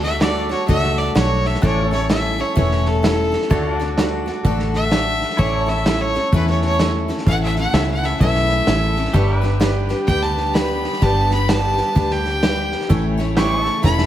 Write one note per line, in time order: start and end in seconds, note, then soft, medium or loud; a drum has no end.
0.00 0.53 D2 medium
0.00 0.13 F#4 medium
0.00 0.22 F#4 soft
0.00 0.13 A4 medium
0.00 0.21 A4 medium
0.00 0.14 D5 medium
0.00 0.21 E5 medium
0.00 snare soft
0.05 0.21 D4 soft
0.20 0.50 A3 medium
0.20 0.50 D4 medium
0.20 0.60 F#4 medium
0.20 1.61 F#4 medium
0.20 0.50 F#4 medium
0.20 0.61 A4 medium
0.20 1.61 A4 medium
0.20 0.48 A4 medium
0.20 0.61 D5 medium
0.20 0.50 D5 medium
0.20 1.62 D5 medium
0.20 snare loud
0.20 hi-hat pedal medium
0.49 0.67 D4 soft
0.49 0.68 F#4 soft
0.49 0.68 A4 soft
0.49 0.68 C#5 medium
0.49 snare soft
0.68 1.09 C#2 medium
0.68 1.14 A3 medium
0.68 1.15 D4 medium
0.68 1.08 F#4 medium
0.68 1.15 F#4 medium
0.68 1.08 A4 medium
0.68 1.17 A4 medium
0.68 1.09 D5 medium
0.68 1.00 E5 loud
0.68 kick loud
0.68 snare soft
0.83 snare soft
0.97 1.15 D5 medium
0.97 snare soft
1.15 1.55 B1 medium
1.15 1.63 A3 medium
1.15 1.63 D4 medium
1.15 1.55 F#4 medium
1.15 1.63 F#4 medium
1.15 1.55 A4 medium
1.15 1.64 A4 medium
1.15 1.48 C#5 medium
1.15 1.55 D5 medium
1.15 snare loud
1.15 hi-hat pedal medium
1.45 1.63 E5 medium
1.45 snare soft
1.54 snare soft
1.62 2.41 A1 medium
1.62 1.91 A2 medium
1.62 1.91 E3 medium
1.62 1.91 A3 medium
1.62 1.92 C#4 medium
1.62 2.02 E4 medium
1.62 1.91 E4 medium
1.62 1.87 F#4 medium
1.62 2.02 A4 medium
1.62 3.49 A4 medium
1.62 1.90 A4 medium
1.62 2.02 C#5 medium
1.62 1.91 C#5 medium
1.62 1.85 D5 medium
1.62 kick loud
1.62 snare soft
1.85 3.48 E4 medium
1.85 3.50 C#5 medium
1.91 2.08 A3 soft
1.91 2.09 C#4 soft
1.91 2.10 E4 medium
1.91 2.10 A4 medium
1.91 2.10 C#5 medium
1.91 snare soft
2.09 2.38 A3 medium
2.09 2.39 C#4 medium
2.09 2.48 E4 medium
2.09 2.38 E4 medium
2.09 2.49 A4 medium
2.09 2.37 A4 medium
2.09 2.49 C#5 medium
2.09 2.42 E5 medium
2.09 snare loud
2.09 hi-hat pedal medium
2.38 2.55 A3 soft
2.38 2.56 C#4 soft
2.38 2.56 E4 soft
2.38 2.56 A4 soft
2.38 2.57 C#5 medium
2.38 snare soft
2.55 3.35 E1 medium
2.55 3.03 A2 medium
2.55 3.03 E3 medium
2.55 3.02 A3 medium
2.55 3.03 C#4 medium
2.55 2.95 E4 medium
2.55 3.04 E4 medium
2.55 2.96 A4 medium
2.55 3.05 A4 medium
2.55 2.96 C#5 medium
2.55 2.89 C#5 medium
2.55 kick loud
2.55 snare soft
2.71 snare soft
2.85 3.78 A4 medium
2.85 snare soft
3.03 3.32 A3 medium
3.03 3.32 C#4 medium
3.03 3.42 E4 medium
3.03 3.31 E4 medium
3.03 3.43 A4 medium
3.03 3.30 A4 medium
3.03 3.43 C#5 medium
3.03 snare loud
3.03 hi-hat pedal medium
3.32 3.49 A3 soft
3.32 3.50 C#4 soft
3.32 3.51 E4 soft
3.32 3.50 A4 medium
3.32 snare soft
3.42 snare soft
3.49 4.29 D2 medium
3.49 3.79 D3 medium
3.49 3.79 A3 medium
3.49 3.79 D4 medium
3.49 3.76 E4 medium
3.49 3.89 F#4 medium
3.49 3.79 F#4 medium
3.49 3.90 A4 medium
3.49 5.37 A4 medium
3.49 3.78 A4 medium
3.49 3.72 C#5 medium
3.49 3.90 D5 loud
3.49 kick loud
3.49 snare soft
3.72 5.37 F#4 medium
3.72 5.37 D5 medium
3.79 3.98 D4 medium
3.79 3.98 F#4 medium
3.79 3.98 A4 medium
3.79 snare soft
3.97 4.27 A3 medium
3.97 4.27 D4 medium
3.97 4.36 F#4 medium
3.97 4.27 F#4 medium
3.97 4.36 A4 medium
3.97 4.37 D5 medium
3.97 snare loud
3.97 hi-hat pedal medium
4.01 4.25 A4 medium
4.26 4.44 D4 soft
4.26 4.45 F#4 soft
4.26 4.44 A4 soft
4.26 snare soft
4.43 5.23 A1 medium
4.43 4.91 D3 medium
4.43 4.90 A3 loud
4.43 4.91 D4 medium
4.43 4.83 F#4 medium
4.43 4.92 F#4 loud
4.43 4.83 A4 medium
4.43 4.94 A4 loud
4.43 4.84 D5 medium
4.43 kick loud
4.43 snare soft
4.59 snare soft
4.73 5.40 E5 loud
4.73 snare soft
4.91 5.38 A3 medium
4.91 5.39 D4 medium
4.91 5.31 F#4 medium
4.91 5.39 F#4 medium
4.91 5.31 A4 medium
4.91 5.40 A4 medium
4.91 5.31 D5 medium
4.91 snare loud
4.91 hi-hat pedal medium
5.21 snare soft
5.30 snare soft
5.37 6.17 A1 medium
5.37 5.67 A2 medium
5.37 5.67 E3 medium
5.37 5.67 A3 medium
5.37 5.67 C#4 medium
5.37 9.10 E4 medium
5.37 5.77 E4 medium
5.37 5.66 E4 medium
5.37 5.77 A4 medium
5.37 9.10 A4 medium
5.37 5.65 A4 medium
5.37 5.78 C#5 medium
5.37 5.71 C#5 medium
5.37 5.60 D5 medium
5.37 kick loud
5.37 snare soft
5.60 9.11 C#5 medium
5.66 5.85 A3 soft
5.66 5.85 C#4 soft
5.66 5.85 E4 medium
5.66 5.85 A4 medium
5.66 6.03 E5 medium
5.66 snare soft
5.85 6.14 A3 medium
5.85 6.15 C#4 medium
5.85 6.24 E4 medium
5.85 6.14 E4 medium
5.85 6.25 A4 medium
5.85 6.13 A4 medium
5.85 6.25 C#5 medium
5.85 snare loud
5.85 hi-hat pedal medium
6.01 6.31 C#5 medium
6.14 6.32 A3 soft
6.14 6.33 C#4 soft
6.14 6.33 E4 soft
6.14 6.32 A4 soft
6.14 snare soft
6.32 7.11 E2 medium
6.32 6.79 A2 medium
6.32 6.80 E3 medium
6.32 6.78 A3 medium
6.32 6.79 C#4 medium
6.32 6.71 E4 medium
6.32 6.80 E4 medium
6.32 6.72 A4 medium
6.32 6.80 A4 loud
6.32 6.48 B4 medium
6.32 6.72 C#5 medium
6.32 kick loud
6.32 snare soft
6.47 6.64 C#5 medium
6.47 snare soft
6.62 6.89 C#5 medium
6.62 snare soft
6.79 7.08 A3 medium
6.79 7.08 C#4 medium
6.79 7.18 E4 medium
6.79 7.08 E4 medium
6.79 7.19 A4 medium
6.79 7.07 A4 medium
6.79 7.19 C#5 medium
6.79 snare loud
6.79 hi-hat pedal medium
7.08 7.26 A3 soft
7.08 7.27 C#4 soft
7.08 7.27 E4 soft
7.08 7.26 A4 medium
7.08 snare soft
7.18 snare soft
7.26 7.65 A1 medium
7.26 7.55 A2 medium
7.26 9.13 C#3 medium
7.26 7.55 E3 medium
7.26 9.13 E3 medium
7.26 7.55 A3 medium
7.26 9.13 A3 medium
7.26 7.56 C#4 medium
7.26 7.65 E4 medium
7.26 9.13 E4 medium
7.26 7.56 E4 medium
7.26 7.65 A4 medium
7.26 7.56 A4 medium
7.26 7.66 C#5 medium
7.26 7.42 F#5 loud
7.26 kick loud
7.26 snare soft
7.44 7.58 E5 medium
7.56 7.74 A3 soft
7.56 7.75 C#4 soft
7.56 7.74 E4 medium
7.56 7.74 A4 medium
7.56 7.75 F#5 medium
7.56 snare soft
7.73 8.13 C#2 medium
7.73 8.03 A3 medium
7.73 8.03 C#4 medium
7.73 8.12 E4 medium
7.73 8.13 A4 medium
7.73 8.13 C#5 medium
7.73 7.89 E5 medium
7.73 snare loud
7.73 hi-hat pedal medium
7.77 8.03 E4 medium
7.77 8.02 A4 medium
7.91 8.07 F#5 medium
8.03 8.20 A3 soft
8.03 8.20 C#4 soft
8.03 8.21 E4 soft
8.03 8.21 A4 soft
8.03 8.20 E5 medium
8.03 snare soft
8.20 8.60 B1 medium
8.20 8.67 A2 medium
8.20 8.67 E3 medium
8.20 8.66 A3 medium
8.20 8.68 C#4 medium
8.20 8.59 E4 medium
8.20 8.68 E4 medium
8.20 8.59 A4 medium
8.20 8.68 A4 medium
8.20 8.59 C#5 medium
8.20 9.57 E5 loud
8.20 kick loud
8.20 snare soft
8.35 snare soft
8.49 snare soft
8.67 9.07 A1 medium
8.67 8.96 A3 medium
8.67 8.96 C#4 medium
8.67 9.06 E4 medium
8.67 8.96 E4 medium
8.67 9.06 A4 medium
8.67 8.95 A4 medium
8.67 9.07 C#5 medium
8.67 snare loud
8.67 hi-hat pedal medium
8.96 9.13 A3 soft
8.96 9.14 C#4 medium
8.96 9.14 E4 medium
8.96 9.14 A4 medium
8.96 snare soft
9.05 snare soft
9.13 9.92 G1 medium
9.13 12.87 D3 medium
9.13 9.42 G3 medium
9.13 12.87 G3 medium
9.13 12.86 B3 medium
9.13 9.43 D4 medium
9.13 12.86 G4 medium
9.13 9.53 G4 medium
9.13 9.42 G4 medium
9.13 12.86 G4 medium
9.13 9.39 A4 medium
9.13 9.53 B4 medium
9.13 9.40 B4 loud
9.13 9.36 C#5 medium
9.13 9.54 D5 loud
9.13 kick loud
9.13 snare soft
9.36 12.86 B4 medium
9.36 12.87 D5 medium
9.42 9.60 D4 soft
9.42 9.61 G4 medium
9.42 9.60 B4 medium
9.42 snare soft
9.60 9.89 G3 medium
9.60 9.90 D4 medium
9.60 10.00 G4 medium
9.60 9.89 G4 medium
9.60 10.00 B4 medium
9.60 9.88 B4 medium
9.60 10.01 D5 medium
9.60 snare loud
9.60 hi-hat pedal medium
9.89 10.07 D4 soft
9.89 10.08 G4 soft
9.89 10.08 B4 medium
9.89 snare soft
10.07 10.86 D2 medium
10.07 10.54 G3 medium
10.07 10.55 D4 medium
10.07 10.47 G4 medium
10.07 10.55 G4 medium
10.07 10.47 B4 medium
10.07 10.56 B4 loud
10.07 10.48 D5 medium
10.07 10.25 G5 loud
10.07 kick loud
10.07 snare soft
10.22 10.56 A5 medium
10.22 snare soft
10.37 snare soft
10.54 11.00 G3 medium
10.54 11.01 D4 medium
10.54 10.94 G4 medium
10.54 11.01 G4 medium
10.54 10.95 B4 medium
10.54 10.95 D5 medium
10.54 11.05 B5 medium
10.54 snare loud
10.54 hi-hat pedal medium
10.58 11.02 B4 medium
10.84 snare soft
10.93 snare soft
11.01 11.80 G1 medium
11.01 11.30 G3 medium
11.01 11.30 D4 medium
11.01 11.41 G4 medium
11.01 11.31 G4 medium
11.01 11.41 B4 medium
11.01 11.29 B4 medium
11.01 11.41 D5 medium
11.01 11.33 A5 loud
11.01 kick loud
11.01 snare soft
11.30 11.49 D4 medium
11.30 11.50 G4 medium
11.30 11.49 B4 medium
11.30 11.50 B5 loud
11.30 snare soft
11.48 11.78 G3 medium
11.48 11.78 D4 medium
11.48 11.88 G4 medium
11.48 11.78 G4 medium
11.48 11.88 B4 medium
11.48 11.76 B4 medium
11.48 11.88 D5 medium
11.48 12.13 A5 medium
11.48 snare loud
11.48 hi-hat pedal medium
11.77 11.95 D4 soft
11.77 11.96 G4 soft
11.77 11.96 B4 soft
11.77 snare soft
11.95 12.74 D2 medium
11.95 12.42 G3 medium
11.95 12.42 D4 medium
11.95 12.35 G4 medium
11.95 12.43 G4 medium
11.95 12.35 B4 medium
11.95 12.43 B4 medium
11.95 12.35 D5 medium
11.95 kick loud
11.95 snare soft
12.11 13.03 G5 loud
12.11 snare soft
12.25 snare soft
12.42 12.90 G3 medium
12.42 12.90 D4 medium
12.42 12.82 G4 medium
12.42 12.91 G4 medium
12.42 12.82 B4 medium
12.42 12.91 B4 medium
12.42 12.82 D5 medium
12.42 snare loud
12.42 hi-hat pedal medium
12.72 snare soft
12.81 snare soft
12.89 13.68 A1 medium
12.89 13.18 A2 loud
12.89 14.06 C#3 medium
12.89 13.18 E3 medium
12.89 14.06 E3 medium
12.89 13.18 A3 medium
12.89 14.06 A3 medium
12.89 13.18 C#4 medium
12.89 13.28 E4 medium
12.89 14.06 E4 medium
12.89 13.18 E4 medium
12.89 13.29 A4 medium
12.89 13.29 C#5 loud
12.89 13.16 C#5 loud
12.89 kick loud
12.89 snare soft
13.18 13.36 A3 medium
13.18 13.37 C#4 medium
13.18 13.37 E4 medium
13.18 13.36 C#5 medium
13.18 snare soft
13.35 13.83 A3 medium
13.35 13.83 C#4 medium
13.35 13.75 E4 medium
13.35 13.83 E4 medium
13.35 13.62 G4 medium
13.35 13.76 A4 medium
13.35 13.63 B4 medium
13.35 13.76 C#5 medium
13.35 13.64 D5 medium
13.35 13.83 C#6 medium
13.35 snare loud
13.35 hi-hat pedal medium
13.40 13.84 C#5 medium
13.62 14.06 A4 medium
13.62 14.06 C#5 medium
13.62 14.06 E5 medium
13.62 snare soft
13.83 14.06 E1 medium
13.83 14.06 A2 medium
13.83 14.06 E3 medium
13.83 14.06 A3 medium
13.83 14.06 C#4 medium
13.83 14.06 E4 medium
13.83 14.06 A4 medium
13.83 14.06 C#5 medium
13.83 14.06 B5 loud
13.83 kick loud
13.83 snare medium
13.98 snare medium